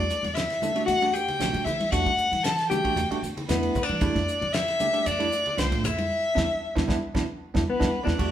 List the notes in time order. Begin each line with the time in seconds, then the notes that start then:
Already playing: D4 D5
0.10 D4 G4, hi-hat pedal
0.23 E2, ride, high conga
0.34 E4 E5, snare, hi-hat pedal, ride
0.50 snare, ride
0.62 G3 A3 D4 A4, hi-hat pedal, high conga, low conga
0.75 G3 A3 D4 F#4, ride
0.86 E2 F#4 F#5, hi-hat pedal, ride
1.02 G3 A3 D4 F#4, ride
1.13 G4 G5, hi-hat pedal
1.28 ride, low conga
1.39 B1 G3 A3 D4 F#4, snare, hi-hat pedal, ride
1.53 G2, ride
1.64 E3 E4 E5, hi-hat pedal, low conga
1.80 D4 F#4, ride, high conga
1.91 E2 G3 A3 D4 F#4 F#5, kick, hi-hat pedal, ride
2.06 G2, kick, ride, high conga
2.18 D4 F#4, muted upright bass stroke, hi-hat pedal
2.32 E3, ride, high conga
2.44 A4 A5, snare, hi-hat pedal, ride
2.59 snare, ride
2.70 G3 A3 D4 F#4 G4 G5, hi-hat pedal, high conga, low conga
2.84 G3 A3 D4 F#4, kick, ride
2.96 E2, hi-hat pedal, ride
3.10 G3 A3 D4 F#4, muted upright bass stroke, ride
3.22 E2 D4 F#4, hi-hat pedal
3.37 ride, low conga
3.48 E2 G3 A3 B3 D4 E4 B4, snare, hi-hat pedal, ride
3.63 ride
3.75 muted upright bass stroke, kick, hi-hat pedal, low conga
3.83 D4 D5
3.89 E3 D4 G4, ride, high conga
4.01 F2 G3 A3 D4 E4, kick, hi-hat pedal, ride
4.16 F2, kick, snare, ride, high conga
4.28 D4 E4, hi-hat pedal
4.41 F2, ride, high conga
4.53 E4 E5, snare, hi-hat pedal, ride
4.68 snare, ride
4.80 G3 A3 D4 G4, hi-hat pedal, high conga, low conga
4.93 G3 A3 D4 G4, ride
5.06 F2 D4 D5, hi-hat pedal, ride
5.19 G3 A3 D4 E4, ride
5.32 D4 F4, hi-hat pedal
5.46 ride, low conga
5.57 C2 G3 A3 C4 D4 F4 C5, snare, hi-hat pedal, ride
5.72 A2, ride
5.84 F2 E4 E5, hi-hat pedal, low conga
5.97 D4 F4, ride, high conga
6.35 E2 B3 D4 E4, kick, snare, high conga
6.76 E2 B3 D4 E4, kick, snare, high conga
6.88 E2 B3 D4 E4, kick, snare, high conga
7.15 E2 B3 D4 E4, kick, snare, high conga
7.54 E2 B3 D4 E4, kick, snare, high conga
7.69 B3 B4
7.80 E2 B3 D4 E4, kick, snare, high conga
8.03 E2 B3 D4 E4 D5
8.07 kick, snare, high conga
8.18 E2 G3 A3 D4 F#4, kick, crash